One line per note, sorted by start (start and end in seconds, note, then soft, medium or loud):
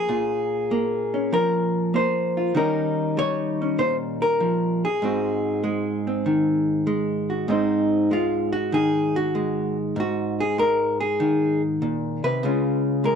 0.00 0.71 A#3 medium
0.00 1.13 C#4 soft
0.00 1.33 G#4 loud
0.09 2.53 A#2 medium
0.09 2.36 F4 medium
0.71 1.93 A#3 medium
1.14 2.54 C#4 soft
1.33 2.53 F3 medium
1.33 1.94 A#4 medium
1.94 2.53 A#3 medium
1.94 2.56 C5 medium
2.37 2.53 F4 soft
2.55 4.40 D#3 medium
2.55 3.16 G3 medium
2.55 3.60 C#4 medium
2.55 5.04 D#4 medium
2.55 3.18 A#4 medium
3.17 4.83 G3 medium
3.17 3.79 C#5 loud
3.62 5.01 C#4 soft
3.78 5.00 A#2 medium
3.78 3.95 C5 loud
4.22 4.83 A#4 medium
4.40 4.83 F3 medium
4.85 7.49 G#4 medium
5.02 7.47 G#2 medium
5.02 5.62 G#3 soft
5.02 6.06 C4 medium
5.02 7.29 F#4 soft
5.64 6.86 G#3 medium
6.07 7.47 C4 soft
6.26 7.46 D#3 medium
6.87 7.46 G#3 medium
7.30 7.46 F#4 soft
7.48 9.95 G#2 medium
7.48 8.11 G#3 soft
7.48 9.93 C4 soft
7.48 8.12 D#4 soft
7.48 8.74 C5 soft
8.11 9.35 G#3 medium
8.11 8.52 F4 medium
8.53 8.72 F#4 medium
8.72 9.93 D#3 medium
8.72 9.15 G#4 medium
9.16 9.77 F#4 medium
9.35 10.03 G#3 medium
9.96 11.80 G#2 medium
9.96 10.40 F#4 medium
10.41 10.58 G#4 medium
10.58 12.44 G#3 medium
10.58 11.00 A#4 loud
11.01 11.61 G#4 medium
11.20 12.40 D#3 medium
11.82 12.23 A#2 medium
12.24 12.42 C3 medium
12.24 13.04 B4 medium
12.43 13.15 C#3 medium
12.43 13.04 G#3 soft
12.43 13.15 C#4 medium
12.43 13.15 F4 medium
13.04 13.15 G#3 medium
13.04 13.15 A#4 medium